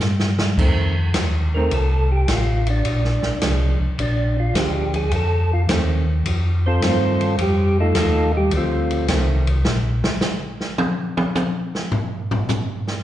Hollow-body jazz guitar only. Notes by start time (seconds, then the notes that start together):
0.59 D#3 A3 C4
1.56 D#3 A3 C4
3.42 F3 G#3 D4
4.56 F3 G#3 D4
5.69 D#3 A3 C4
6.83 D#3 A3 C4
9.09 D#3 A3 C4